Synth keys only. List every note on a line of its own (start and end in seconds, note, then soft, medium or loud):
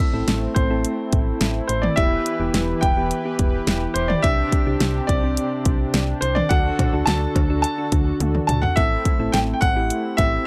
0.14 0.63 C4 medium
0.14 0.63 E4 medium
0.14 0.63 A4 medium
0.70 1.68 C4 medium
0.70 1.68 E4 medium
0.70 1.68 A4 medium
1.98 2.34 B3 medium
1.98 2.34 E4 medium
1.98 2.35 G4 medium
2.40 2.89 B3 medium
2.40 2.89 E4 medium
2.40 2.89 G4 medium
2.97 3.21 B3 medium
2.97 3.21 E4 medium
2.97 3.21 G4 medium
3.25 4.11 B3 medium
3.25 4.11 E4 medium
3.25 4.11 G4 medium
4.24 4.61 C4 medium
4.24 4.61 D4 medium
4.24 4.61 G4 medium
4.67 5.16 C4 medium
4.67 5.16 D4 medium
4.67 5.16 G4 medium
5.23 6.21 C4 medium
5.23 6.21 D4 medium
5.23 6.21 G4 medium
6.51 6.88 D4 medium
6.51 6.87 F#4 medium
6.51 6.88 A4 medium
6.93 7.42 D4 medium
6.93 7.42 F#4 medium
6.93 7.42 A4 medium
7.50 7.74 D4 medium
7.50 7.74 F#4 medium
7.50 7.74 A4 medium
7.78 8.64 D4 medium
7.78 8.64 F#4 medium
7.78 8.64 A4 medium
8.77 9.14 C4 medium
8.77 9.14 E4 medium
8.77 9.14 A4 medium
9.20 9.69 C4 medium
9.20 9.69 E4 medium
9.20 9.69 A4 medium
9.76 10.47 C4 medium
9.76 10.47 E4 medium
9.76 10.47 G4 medium